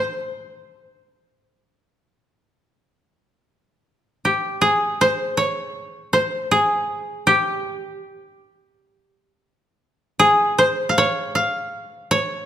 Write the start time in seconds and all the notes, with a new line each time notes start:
Already playing: G4 C5
4.25 G4
4.61 G#4
5.01 C5
5.37 C#5
6.13 C5
6.51 G#4
7.27 G4
10.19 G#4
10.58 C5
10.89 F5
10.98 C#5
11.35 F5
12.11 C#5